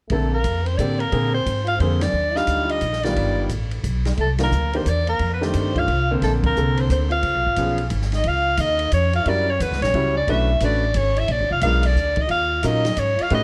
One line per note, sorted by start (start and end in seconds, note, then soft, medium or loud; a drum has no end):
0.10 0.43 A#1 medium
0.10 0.31 D3 soft
0.10 0.30 A3 medium
0.10 0.31 A#3 soft
0.10 0.31 C4 soft
0.10 0.31 A4 medium
0.10 0.32 A4 medium
0.10 kick soft
0.10 ride soft
0.32 0.66 A#3 medium
0.32 0.68 A#4 medium
0.44 0.77 F2 medium
0.44 kick soft
0.44 hi-hat pedal soft
0.44 ride medium
0.65 0.78 C4 medium
0.65 0.79 C5 medium
0.65 ride soft
0.76 1.11 A2 medium
0.76 0.98 D3 soft
0.76 0.99 A#3 soft
0.76 0.99 C4 soft
0.76 1.00 D4 medium
0.76 0.98 G4 soft
0.76 1.01 D5 medium
0.76 kick soft
0.76 hi-hat pedal soft
0.76 ride soft
0.99 1.31 A#3 medium
0.99 1.34 A#4 medium
0.99 ride soft
1.12 1.45 A#2 medium
1.12 1.32 D3 soft
1.12 1.32 A#3 soft
1.12 1.32 C4 soft
1.12 1.32 G#4 medium
1.12 kick soft
1.12 ride soft
1.32 1.64 C4 medium
1.32 1.66 C5 medium
1.46 1.79 G#2 medium
1.46 kick soft
1.46 hi-hat pedal soft
1.46 ride medium
1.64 1.77 F4 medium
1.64 1.79 F5 medium
1.64 ride soft
1.78 2.13 F2 medium
1.78 2.00 D3 medium
1.78 2.02 C4 medium
1.78 2.04 C5 medium
1.78 kick soft
1.78 ride soft
1.82 2.01 A#3 soft
1.82 2.00 C4 soft
1.82 2.00 G#4 medium
2.00 2.35 D4 medium
2.00 2.38 D5 medium
2.00 snare medium
2.00 ride medium
2.13 2.46 D#2 medium
2.33 2.80 G3 medium
2.33 2.79 D4 medium
2.33 2.79 D#4 medium
2.33 2.68 F4 medium
2.33 2.80 F4 medium
2.33 2.72 F5 medium
2.33 snare soft
2.47 2.80 D2 medium
2.47 kick soft
2.47 hi-hat pedal soft
2.47 ride soft
2.67 3.03 D#4 medium
2.67 3.05 D#5 medium
2.67 ride soft
2.81 3.15 A#1 medium
2.81 kick soft
2.81 hi-hat pedal soft
2.81 ride soft
2.93 snare soft
3.02 3.48 D#3 medium
3.02 3.48 G3 soft
3.02 3.48 B3 soft
3.02 3.49 D4 medium
3.02 3.48 F4 medium
3.02 3.50 D5 medium
3.02 snare soft
3.02 ride soft
3.15 3.48 G1 medium
3.15 kick soft
3.15 ride soft
3.49 3.82 A1 medium
3.49 kick soft
3.49 hi-hat pedal soft
3.49 ride soft
3.71 ride soft
3.84 4.17 B1 medium
3.84 kick soft
3.84 hi-hat pedal medium
3.84 ride soft
4.05 snare soft
4.05 ride soft
4.17 4.51 C2 medium
4.17 4.27 A3 medium
4.17 4.30 A4 medium
4.17 kick soft
4.17 ride soft
4.38 4.51 D#3 medium
4.38 4.75 A#3 medium
4.38 4.51 A#3 soft
4.38 4.50 D4 medium
4.38 4.51 F4 medium
4.38 snare medium
4.38 ride medium
4.43 4.78 A#4 medium
4.52 4.85 D2 medium
4.52 hi-hat pedal medium
4.73 4.85 D#3 medium
4.73 4.85 A#3 soft
4.73 4.87 C4 medium
4.73 4.85 D4 soft
4.73 4.85 G4 medium
4.73 4.90 C5 medium
4.73 ride soft
4.86 5.19 E2 medium
4.86 5.06 D4 medium
4.86 5.08 D5 medium
4.86 kick soft
4.86 hi-hat pedal soft
4.86 ride medium
5.06 5.30 A#3 medium
5.06 5.31 A#4 medium
5.06 ride soft
5.19 5.52 F2 medium
5.19 kick soft
5.19 ride soft
5.32 5.42 B3 soft
5.32 5.46 B4 medium
5.41 5.85 D#3 medium
5.41 5.85 A3 medium
5.41 5.76 C4 medium
5.41 5.85 D4 medium
5.41 5.85 G4 medium
5.41 5.80 C5 medium
5.41 snare soft
5.54 5.87 G2 medium
5.54 kick soft
5.54 hi-hat pedal soft
5.54 ride medium
5.74 6.09 F4 medium
5.74 kick soft
5.74 ride soft
5.79 6.11 F5 medium
5.88 6.20 C2 medium
5.88 kick soft
5.88 ride soft
6.11 6.54 D3 medium
6.11 6.54 A#3 medium
6.11 6.54 C4 medium
6.11 6.54 C5 medium
6.22 6.55 A#1 medium
6.22 6.32 A3 medium
6.22 6.33 A4 medium
6.22 kick soft
6.22 snare soft
6.22 ride soft
6.43 6.78 A#3 medium
6.43 6.82 A#4 medium
6.43 kick medium
6.43 ride medium
6.56 6.89 C2 medium
6.56 7.08 D3 medium
6.56 7.08 A#3 soft
6.56 7.08 C4 medium
6.56 7.08 A4 medium
6.56 hi-hat pedal soft
6.76 6.87 C4 medium
6.76 6.91 C5 medium
6.76 ride soft
6.88 7.22 D2 medium
6.88 7.09 C4 medium
6.88 kick soft
6.88 hi-hat pedal soft
6.88 ride soft
6.92 7.11 C5 medium
7.10 7.86 F4 medium
7.10 7.87 F5 medium
7.10 ride soft
7.23 7.35 C#2 medium
7.23 kick soft
7.23 ride soft
7.35 7.46 B1 soft
7.46 7.56 G#1 medium
7.56 7.90 B1 medium
7.56 7.77 F3 medium
7.56 7.77 B3 soft
7.56 7.77 C#4 soft
7.56 7.77 G#4 medium
7.56 kick soft
7.56 hi-hat pedal soft
7.56 ride medium
7.78 ride soft
7.90 8.24 G#1 medium
7.90 kick soft
7.90 hi-hat pedal soft
7.90 ride medium
8.02 snare soft
8.12 8.28 D#4 medium
8.12 8.29 D#5 medium
8.12 snare soft
8.12 ride soft
8.23 8.57 C#2 medium
8.23 8.61 F4 medium
8.23 kick soft
8.23 ride medium
8.28 8.62 F5 medium
8.57 8.91 D#2 medium
8.57 8.93 D#4 medium
8.57 8.93 D#5 medium
8.57 kick soft
8.57 hi-hat pedal medium
8.57 ride medium
8.79 ride soft
8.92 9.25 F2 medium
8.92 9.13 C#4 medium
8.92 9.13 C#5 medium
8.92 kick soft
8.92 hi-hat pedal soft
8.92 ride medium
9.13 9.27 F4 medium
9.13 9.30 F5 medium
9.13 ride soft
9.25 9.59 F#2 medium
9.25 9.46 G3 medium
9.25 9.46 C#4 soft
9.25 9.49 D4 medium
9.25 9.46 E4 soft
9.25 9.46 F#4 soft
9.25 9.46 A#4 medium
9.25 9.52 D5 medium
9.25 kick soft
9.25 ride medium
9.48 9.62 C#4 medium
9.48 9.63 C#5 medium
9.60 9.71 E2 medium
9.60 9.82 B3 medium
9.60 9.81 B4 medium
9.60 kick soft
9.60 hi-hat pedal medium
9.60 ride medium
9.71 9.81 C#2 medium
9.71 snare soft
9.81 9.92 A#1 medium
9.81 10.14 C#4 medium
9.81 10.13 C#5 medium
9.81 snare soft
9.81 ride soft
9.94 10.27 C#2 medium
9.94 10.14 G3 medium
9.94 10.14 C#4 medium
9.94 10.14 E4 medium
9.94 10.14 F#4 medium
9.94 10.14 C#5 medium
9.94 kick soft
9.94 ride medium
10.16 10.27 D4 medium
10.16 10.28 D5 medium
10.27 10.60 B1 medium
10.27 10.48 A3 medium
10.27 10.48 C#4 medium
10.27 10.48 D4 medium
10.27 10.59 E4 medium
10.27 10.48 F#4 medium
10.27 10.48 B4 medium
10.27 10.60 E5 medium
10.27 kick soft
10.27 ride medium
10.60 10.94 A1 medium
10.60 10.81 A3 medium
10.60 10.82 C#4 soft
10.60 10.95 D4 medium
10.60 10.81 D4 medium
10.60 10.82 F#4 soft
10.60 10.82 B4 medium
10.60 kick soft
10.60 hi-hat pedal medium
10.60 ride medium
10.65 10.99 D5 medium
10.93 11.28 G#1 medium
10.93 11.18 C#4 medium
10.93 11.20 C#5 medium
10.93 kick soft
10.93 hi-hat pedal soft
10.93 ride medium
11.16 11.30 E4 medium
11.16 11.33 E5 medium
11.16 ride soft
11.28 11.40 A#1 medium
11.28 11.49 D4 medium
11.28 11.52 D5 medium
11.28 kick soft
11.28 ride medium
11.40 11.50 G#1 medium
11.50 11.61 F1 medium
11.50 11.61 F4 medium
11.50 11.63 F5 medium
11.61 11.95 B1 medium
11.61 11.83 G#3 medium
11.61 11.82 B3 medium
11.61 11.83 D4 soft
11.61 11.84 F4 medium
11.61 11.83 F4 soft
11.61 11.83 A#4 medium
11.61 11.87 F5 medium
11.61 kick soft
11.61 hi-hat pedal soft
11.61 ride medium
11.83 12.18 D4 medium
11.83 12.23 D5 medium
11.83 ride medium
11.95 12.29 D2 medium
11.95 kick soft
11.95 hi-hat pedal medium
12.16 12.27 D#4 medium
12.16 kick soft
12.16 ride soft
12.22 12.30 D#5 medium
12.28 12.62 D#2 medium
12.28 12.64 F4 medium
12.28 12.68 F5 medium
12.28 kick soft
12.28 ride medium
12.63 12.96 A#2 medium
12.63 12.83 F#3 medium
12.63 12.83 C#4 soft
12.63 12.99 D#4 medium
12.63 12.83 D#4 soft
12.63 12.84 F4 soft
12.63 12.83 A#4 medium
12.63 13.01 D#5 medium
12.63 kick soft
12.63 hi-hat pedal medium
12.63 ride medium
12.85 snare medium
12.85 ride soft
12.97 13.17 G#2 medium
12.97 13.20 C#4 medium
12.97 13.24 C#5 medium
12.97 kick soft
12.97 hi-hat pedal medium
12.97 ride medium
13.18 13.29 F4 medium
13.18 muted upright bass stroke soft
13.18 ride soft
13.22 13.33 F5 medium
13.30 13.44 A2 medium
13.30 13.44 A3 medium
13.30 13.44 C#4 medium
13.30 13.44 D#4 medium
13.30 13.44 F#4 medium
13.30 13.44 G4 medium
13.30 13.44 B4 medium
13.30 kick soft
13.30 ride medium
13.34 13.44 D#5 medium